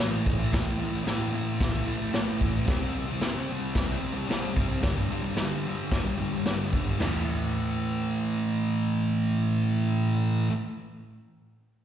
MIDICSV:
0, 0, Header, 1, 3, 480
1, 0, Start_track
1, 0, Tempo, 541028
1, 460, Time_signature, 4, 2, 24, 8
1, 10512, End_track
2, 0, Start_track
2, 0, Title_t, "Distorted electric guitar"
2, 0, Program_c, 0, 30
2, 0, Note_on_c, 0, 45, 94
2, 14, Note_on_c, 0, 52, 83
2, 29, Note_on_c, 0, 57, 98
2, 219, Note_off_c, 0, 45, 0
2, 229, Note_on_c, 0, 45, 75
2, 247, Note_off_c, 0, 52, 0
2, 250, Note_off_c, 0, 57, 0
2, 251, Note_on_c, 0, 52, 81
2, 260, Note_on_c, 0, 57, 76
2, 336, Note_off_c, 0, 57, 0
2, 347, Note_on_c, 0, 57, 73
2, 377, Note_off_c, 0, 52, 0
2, 381, Note_on_c, 0, 52, 61
2, 458, Note_off_c, 0, 45, 0
2, 469, Note_on_c, 0, 45, 91
2, 486, Note_off_c, 0, 52, 0
2, 490, Note_off_c, 0, 57, 0
2, 490, Note_on_c, 0, 52, 88
2, 501, Note_on_c, 0, 57, 96
2, 578, Note_off_c, 0, 57, 0
2, 589, Note_on_c, 0, 57, 74
2, 618, Note_off_c, 0, 52, 0
2, 622, Note_on_c, 0, 52, 66
2, 683, Note_off_c, 0, 45, 0
2, 694, Note_on_c, 0, 45, 70
2, 712, Note_off_c, 0, 52, 0
2, 715, Note_on_c, 0, 52, 76
2, 717, Note_off_c, 0, 57, 0
2, 728, Note_on_c, 0, 57, 83
2, 809, Note_off_c, 0, 57, 0
2, 819, Note_on_c, 0, 57, 70
2, 851, Note_off_c, 0, 52, 0
2, 854, Note_on_c, 0, 52, 56
2, 906, Note_off_c, 0, 45, 0
2, 917, Note_on_c, 0, 45, 100
2, 934, Note_off_c, 0, 52, 0
2, 937, Note_on_c, 0, 52, 114
2, 947, Note_off_c, 0, 57, 0
2, 958, Note_on_c, 0, 57, 98
2, 1162, Note_off_c, 0, 45, 0
2, 1173, Note_on_c, 0, 45, 83
2, 1186, Note_off_c, 0, 52, 0
2, 1189, Note_on_c, 0, 52, 75
2, 1193, Note_off_c, 0, 57, 0
2, 1203, Note_on_c, 0, 57, 78
2, 1513, Note_off_c, 0, 57, 0
2, 1523, Note_on_c, 0, 57, 65
2, 1547, Note_off_c, 0, 52, 0
2, 1558, Note_on_c, 0, 52, 65
2, 1616, Note_off_c, 0, 45, 0
2, 1626, Note_on_c, 0, 45, 70
2, 1635, Note_off_c, 0, 52, 0
2, 1646, Note_on_c, 0, 52, 70
2, 1653, Note_off_c, 0, 57, 0
2, 1664, Note_on_c, 0, 57, 82
2, 1741, Note_off_c, 0, 57, 0
2, 1751, Note_on_c, 0, 57, 63
2, 1772, Note_off_c, 0, 52, 0
2, 1783, Note_on_c, 0, 52, 54
2, 1857, Note_off_c, 0, 45, 0
2, 1867, Note_on_c, 0, 45, 89
2, 1877, Note_off_c, 0, 52, 0
2, 1887, Note_on_c, 0, 52, 99
2, 1894, Note_off_c, 0, 57, 0
2, 1904, Note_on_c, 0, 57, 98
2, 2099, Note_off_c, 0, 45, 0
2, 2109, Note_on_c, 0, 45, 78
2, 2124, Note_off_c, 0, 52, 0
2, 2130, Note_off_c, 0, 57, 0
2, 2134, Note_on_c, 0, 52, 81
2, 2141, Note_on_c, 0, 57, 84
2, 2234, Note_off_c, 0, 57, 0
2, 2244, Note_on_c, 0, 57, 70
2, 2269, Note_off_c, 0, 52, 0
2, 2280, Note_on_c, 0, 52, 60
2, 2345, Note_off_c, 0, 45, 0
2, 2352, Note_off_c, 0, 57, 0
2, 2357, Note_on_c, 0, 48, 82
2, 2370, Note_off_c, 0, 52, 0
2, 2375, Note_on_c, 0, 55, 103
2, 2396, Note_on_c, 0, 60, 89
2, 2478, Note_off_c, 0, 60, 0
2, 2488, Note_on_c, 0, 60, 90
2, 2517, Note_off_c, 0, 55, 0
2, 2520, Note_on_c, 0, 55, 64
2, 2606, Note_off_c, 0, 48, 0
2, 2617, Note_on_c, 0, 48, 74
2, 2631, Note_off_c, 0, 55, 0
2, 2635, Note_on_c, 0, 55, 79
2, 2639, Note_off_c, 0, 60, 0
2, 2649, Note_on_c, 0, 60, 81
2, 2722, Note_off_c, 0, 60, 0
2, 2732, Note_on_c, 0, 60, 69
2, 2769, Note_off_c, 0, 55, 0
2, 2773, Note_on_c, 0, 55, 61
2, 2844, Note_off_c, 0, 48, 0
2, 2854, Note_on_c, 0, 48, 94
2, 2867, Note_off_c, 0, 55, 0
2, 2871, Note_on_c, 0, 55, 89
2, 2877, Note_off_c, 0, 60, 0
2, 2887, Note_on_c, 0, 60, 125
2, 3088, Note_off_c, 0, 48, 0
2, 3098, Note_on_c, 0, 48, 61
2, 3114, Note_off_c, 0, 55, 0
2, 3117, Note_off_c, 0, 60, 0
2, 3117, Note_on_c, 0, 55, 71
2, 3128, Note_on_c, 0, 60, 73
2, 3422, Note_off_c, 0, 60, 0
2, 3433, Note_on_c, 0, 60, 75
2, 3463, Note_off_c, 0, 55, 0
2, 3473, Note_on_c, 0, 55, 51
2, 3543, Note_off_c, 0, 48, 0
2, 3553, Note_on_c, 0, 48, 66
2, 3564, Note_off_c, 0, 55, 0
2, 3575, Note_on_c, 0, 55, 70
2, 3584, Note_off_c, 0, 60, 0
2, 3594, Note_on_c, 0, 60, 77
2, 3659, Note_off_c, 0, 60, 0
2, 3670, Note_on_c, 0, 60, 68
2, 3689, Note_off_c, 0, 55, 0
2, 3700, Note_on_c, 0, 55, 66
2, 3790, Note_off_c, 0, 48, 0
2, 3801, Note_on_c, 0, 48, 89
2, 3811, Note_off_c, 0, 55, 0
2, 3821, Note_on_c, 0, 55, 80
2, 3822, Note_off_c, 0, 60, 0
2, 3833, Note_on_c, 0, 60, 96
2, 4015, Note_off_c, 0, 48, 0
2, 4026, Note_on_c, 0, 48, 74
2, 4039, Note_off_c, 0, 55, 0
2, 4050, Note_on_c, 0, 55, 72
2, 4060, Note_off_c, 0, 60, 0
2, 4070, Note_on_c, 0, 60, 74
2, 4146, Note_off_c, 0, 60, 0
2, 4157, Note_on_c, 0, 60, 79
2, 4176, Note_off_c, 0, 55, 0
2, 4186, Note_on_c, 0, 55, 56
2, 4261, Note_off_c, 0, 48, 0
2, 4264, Note_on_c, 0, 43, 83
2, 4267, Note_off_c, 0, 60, 0
2, 4281, Note_off_c, 0, 55, 0
2, 4283, Note_on_c, 0, 50, 79
2, 4302, Note_on_c, 0, 55, 110
2, 4388, Note_off_c, 0, 55, 0
2, 4399, Note_on_c, 0, 55, 78
2, 4413, Note_off_c, 0, 50, 0
2, 4423, Note_on_c, 0, 50, 61
2, 4506, Note_off_c, 0, 43, 0
2, 4516, Note_on_c, 0, 43, 69
2, 4522, Note_off_c, 0, 50, 0
2, 4533, Note_on_c, 0, 50, 70
2, 4535, Note_off_c, 0, 55, 0
2, 4546, Note_on_c, 0, 55, 75
2, 4627, Note_off_c, 0, 55, 0
2, 4637, Note_on_c, 0, 55, 70
2, 4665, Note_off_c, 0, 50, 0
2, 4676, Note_on_c, 0, 50, 62
2, 4746, Note_off_c, 0, 43, 0
2, 4757, Note_on_c, 0, 43, 88
2, 4769, Note_off_c, 0, 50, 0
2, 4777, Note_off_c, 0, 55, 0
2, 4780, Note_on_c, 0, 50, 114
2, 4788, Note_on_c, 0, 55, 102
2, 4998, Note_off_c, 0, 43, 0
2, 5009, Note_on_c, 0, 43, 72
2, 5019, Note_off_c, 0, 50, 0
2, 5029, Note_on_c, 0, 50, 69
2, 5036, Note_off_c, 0, 55, 0
2, 5046, Note_on_c, 0, 55, 68
2, 5349, Note_off_c, 0, 55, 0
2, 5359, Note_on_c, 0, 55, 70
2, 5383, Note_off_c, 0, 50, 0
2, 5393, Note_on_c, 0, 50, 47
2, 5471, Note_off_c, 0, 43, 0
2, 5482, Note_on_c, 0, 43, 65
2, 5490, Note_off_c, 0, 50, 0
2, 5501, Note_on_c, 0, 50, 79
2, 5503, Note_off_c, 0, 55, 0
2, 5514, Note_on_c, 0, 55, 69
2, 5601, Note_off_c, 0, 55, 0
2, 5612, Note_on_c, 0, 55, 75
2, 5636, Note_off_c, 0, 50, 0
2, 5647, Note_on_c, 0, 50, 60
2, 5712, Note_off_c, 0, 43, 0
2, 5723, Note_on_c, 0, 43, 87
2, 5734, Note_off_c, 0, 50, 0
2, 5743, Note_off_c, 0, 55, 0
2, 5745, Note_on_c, 0, 50, 78
2, 5754, Note_on_c, 0, 55, 79
2, 5951, Note_off_c, 0, 43, 0
2, 5962, Note_on_c, 0, 43, 66
2, 5969, Note_off_c, 0, 50, 0
2, 5980, Note_on_c, 0, 50, 74
2, 5985, Note_off_c, 0, 55, 0
2, 5996, Note_on_c, 0, 55, 78
2, 6070, Note_off_c, 0, 55, 0
2, 6080, Note_on_c, 0, 55, 62
2, 6114, Note_off_c, 0, 50, 0
2, 6125, Note_on_c, 0, 50, 54
2, 6186, Note_off_c, 0, 50, 0
2, 6189, Note_off_c, 0, 55, 0
2, 6190, Note_off_c, 0, 43, 0
2, 6190, Note_on_c, 0, 45, 80
2, 6208, Note_on_c, 0, 52, 95
2, 6226, Note_on_c, 0, 57, 95
2, 9295, Note_off_c, 0, 45, 0
2, 9314, Note_off_c, 0, 52, 0
2, 9331, Note_off_c, 0, 57, 0
2, 10512, End_track
3, 0, Start_track
3, 0, Title_t, "Drums"
3, 0, Note_on_c, 9, 38, 114
3, 85, Note_off_c, 9, 38, 0
3, 233, Note_on_c, 9, 36, 78
3, 322, Note_off_c, 9, 36, 0
3, 472, Note_on_c, 9, 36, 106
3, 475, Note_on_c, 9, 46, 60
3, 478, Note_on_c, 9, 38, 127
3, 561, Note_off_c, 9, 36, 0
3, 564, Note_off_c, 9, 46, 0
3, 567, Note_off_c, 9, 38, 0
3, 946, Note_on_c, 9, 46, 60
3, 950, Note_on_c, 9, 38, 108
3, 1035, Note_off_c, 9, 46, 0
3, 1039, Note_off_c, 9, 38, 0
3, 1424, Note_on_c, 9, 36, 115
3, 1424, Note_on_c, 9, 46, 59
3, 1428, Note_on_c, 9, 38, 106
3, 1513, Note_off_c, 9, 36, 0
3, 1513, Note_off_c, 9, 46, 0
3, 1517, Note_off_c, 9, 38, 0
3, 1895, Note_on_c, 9, 46, 57
3, 1898, Note_on_c, 9, 38, 109
3, 1984, Note_off_c, 9, 46, 0
3, 1987, Note_off_c, 9, 38, 0
3, 2139, Note_on_c, 9, 36, 80
3, 2227, Note_off_c, 9, 36, 0
3, 2372, Note_on_c, 9, 46, 60
3, 2375, Note_on_c, 9, 38, 107
3, 2376, Note_on_c, 9, 36, 123
3, 2460, Note_off_c, 9, 46, 0
3, 2464, Note_off_c, 9, 38, 0
3, 2465, Note_off_c, 9, 36, 0
3, 2849, Note_on_c, 9, 46, 51
3, 2853, Note_on_c, 9, 38, 117
3, 2938, Note_off_c, 9, 46, 0
3, 2941, Note_off_c, 9, 38, 0
3, 3325, Note_on_c, 9, 46, 53
3, 3328, Note_on_c, 9, 38, 98
3, 3330, Note_on_c, 9, 36, 92
3, 3413, Note_off_c, 9, 46, 0
3, 3417, Note_off_c, 9, 38, 0
3, 3419, Note_off_c, 9, 36, 0
3, 3814, Note_on_c, 9, 46, 56
3, 3817, Note_on_c, 9, 38, 98
3, 3902, Note_off_c, 9, 46, 0
3, 3906, Note_off_c, 9, 38, 0
3, 4050, Note_on_c, 9, 36, 75
3, 4139, Note_off_c, 9, 36, 0
3, 4282, Note_on_c, 9, 46, 55
3, 4285, Note_on_c, 9, 38, 113
3, 4289, Note_on_c, 9, 36, 117
3, 4371, Note_off_c, 9, 46, 0
3, 4374, Note_off_c, 9, 38, 0
3, 4378, Note_off_c, 9, 36, 0
3, 4759, Note_on_c, 9, 46, 57
3, 4763, Note_on_c, 9, 38, 101
3, 4848, Note_off_c, 9, 46, 0
3, 4851, Note_off_c, 9, 38, 0
3, 5248, Note_on_c, 9, 36, 91
3, 5248, Note_on_c, 9, 46, 54
3, 5251, Note_on_c, 9, 38, 106
3, 5336, Note_off_c, 9, 36, 0
3, 5336, Note_off_c, 9, 46, 0
3, 5340, Note_off_c, 9, 38, 0
3, 5726, Note_on_c, 9, 46, 58
3, 5730, Note_on_c, 9, 38, 107
3, 5815, Note_off_c, 9, 46, 0
3, 5818, Note_off_c, 9, 38, 0
3, 5970, Note_on_c, 9, 36, 77
3, 6059, Note_off_c, 9, 36, 0
3, 6213, Note_on_c, 9, 43, 93
3, 6213, Note_on_c, 9, 52, 84
3, 6216, Note_on_c, 9, 38, 99
3, 6301, Note_off_c, 9, 43, 0
3, 6301, Note_off_c, 9, 52, 0
3, 6305, Note_off_c, 9, 38, 0
3, 10512, End_track
0, 0, End_of_file